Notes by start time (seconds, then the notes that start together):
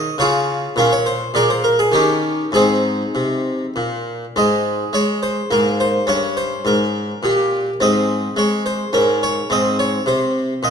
Already playing: D#5
0.18 C#3 F4 G#4 C#5
0.76 A#2 C#4 F4 A#4
0.92 C#5
1.06 C5
1.34 A#2 G#4 A#4 D5
1.50 C5
1.64 A#4
1.79 G#4
1.92 D#3 C#4 D#4 G4
2.52 G#2 C4 D#4 G#4
3.15 C3
3.76 A#2
4.36 G#2 G#3 D#5
4.93 G#3 C#5
5.23 C5
5.51 G#2 A#3 A#4
5.80 C5
6.07 G2 C#4 C#5
6.37 C5
6.65 G#2 A#4
7.23 A#2 G4
7.80 G#2 C4 D#5
8.36 G#3 C#5
8.66 C5
8.93 G#2 C#4 A#4
9.23 C#5
9.50 G#2 C4 D#5
9.79 C#5
10.06 C3 C5
10.63 A#2 D#5